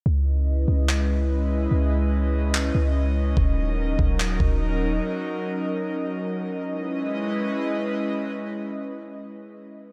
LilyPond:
<<
  \new Staff \with { instrumentName = "Analog synth pad" } { \time 4/4 \key cis \dorian \tempo 4 = 145 << { <cis' dis''>1~ | <cis' dis''>1~ | <cis' dis''>1~ | <cis' dis''>1 |
<gis cis' e' b' dis''>1~ | <gis cis' e' b' dis''>1 | } \\ { <gis e' b'>1~ | <gis e' b'>1 | <fis dis' ais'>1~ | <fis dis' ais'>1 |
r1 | r1 | } >> }
  \new Staff \with { instrumentName = "808-style bass" } { \clef bass \time 4/4 \key cis \dorian cis,4. cis,2~ cis,8 | cis,2~ cis,8 cis,4. | dis,,4. dis,,4 dis,,4. | r1 |
r1 | r1 | }
  \new DrumStaff \with { instrumentName = "Drums" } \drummode { \time 4/4 r4 r4 hc4 r4 | r4 r4 hc4 r4 | bd4 r8 bd8 hc8 bd8 r4 | r4 r4 r4 r4 |
r4 r4 r4 r4 | r4 r4 r4 r4 | }
>>